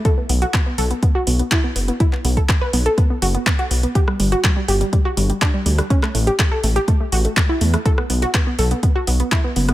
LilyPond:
<<
  \new Staff \with { instrumentName = "Synth pluck" } { \time 4/4 \key b \minor \tempo 4 = 123 a'16 b16 b16 fis'16 b16 b16 a'16 b16 b16 fis'16 b16 b16 e'16 b16 b16 b16 | e'16 b16 b16 a'16 b16 b'16 b16 a'16 b16 b16 fis'16 b16 b16 fis'16 b16 b16 | g'16 g16 g16 fis'16 g16 g16 g'16 g16 g16 fis'16 g16 g16 d'16 g16 g16 g16 | cis'16 a16 a16 g'16 a16 a'16 a16 g'16 a16 a16 fis'16 a16 a16 e'16 a16 a16 |
a'16 b16 b16 fis'16 b16 b16 a'16 b16 b16 fis'16 b16 b16 e'16 b16 b16 b16 | }
  \new Staff \with { instrumentName = "Detuned saw bass" } { \clef bass \time 4/4 \key b \minor r8 b,,8 r8 b,,8 r8 b,,8 r8 fis,,8 | r8 b,,8 r8 b,,8 r8 fis,,8 r8 b,,8 | r8 g,,8 r8 g,,8 r8 g,,8 r8 d,8 | r8 a,,8 r8 a,,8 r8 a,,8 r8 e,8 |
r8 b,,8 r8 b,,8 r8 b,,8 r8 fis,,8 | }
  \new DrumStaff \with { instrumentName = "Drums" } \drummode { \time 4/4 <hh bd>8 hho16 hh16 <hc hh bd>8 hho16 hh16 <hh bd>8 hho16 hh16 <hc hh bd>8 hho16 hh16 | <hh bd>16 hc16 hho16 <hh bd>16 <hc hh bd>8 hho16 hh16 <hh bd>8 hho16 hh16 <hc hh bd>16 hh16 hho16 hh16 | <hh bd>16 ss16 hho16 hh16 <hc hh bd>8 hho16 hh16 <hh bd>8 hho16 hh16 <hc hh bd>8 hho16 <hh ss>16 | <hh bd>16 <hc ss>16 hho16 hh16 <hc hh bd>8 hho16 hh16 <hh bd>8 hho16 hh16 <hc hh bd>8 hho16 <hh ss>16 |
<hh bd>16 ss16 hho16 hh16 <hc hh bd>8 hho16 hh16 <hh bd>8 hho16 hh16 <hc hh bd>8 hho16 <hh ss>16 | }
>>